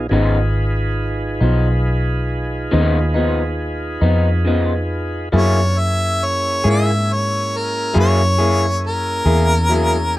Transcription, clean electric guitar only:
0.11 C#3 F3 B3 D#4
1.41 F3 B3 D#4
2.71 C#3 F3 B3 D#4
3.14 F3 B3 D#4
4.01 F3 B3 D#4
4.45 C#3 F3 B3 D#4
5.32 F#3 A#3 E4 G#4
6.64 A#3 E4 G#4
7.94 F#3 A#3 E4 G#4
8.38 A#3 E4 G#4
9.26 A#3 E4 G#4
9.69 F#3 A#3 E4 G#4

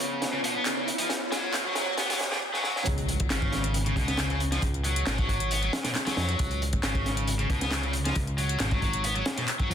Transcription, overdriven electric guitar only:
Already playing: C#3
0.33 C#3
0.44 B2
0.55 B3
0.66 C#3
0.77 C#3
0.99 F3
1.32 F#3
1.54 B2
1.65 F#3
1.76 F#3
1.98 B3
2.09 F#3
2.31 B2
2.54 F#3
2.64 F#3
3.30 C#3
3.86 C#3
3.97 B2
4.08 B3
4.19 C#3
4.30 C#3
4.52 F3
4.85 F#3
5.07 B2
5.19 F#3
5.29 F#3
5.51 B3
5.63 F#3
5.85 B2
6.07 F#3
6.17 F#3
6.83 C#3
7.39 C#3
7.50 B2
7.62 B3
7.72 C#3
7.83 C#3
8.05 F3
8.38 F#3
8.60 B2
8.71 F#3
8.82 F#3
9.04 B3
9.16 F#3
9.37 B2
9.60 F#3
9.70 F#3

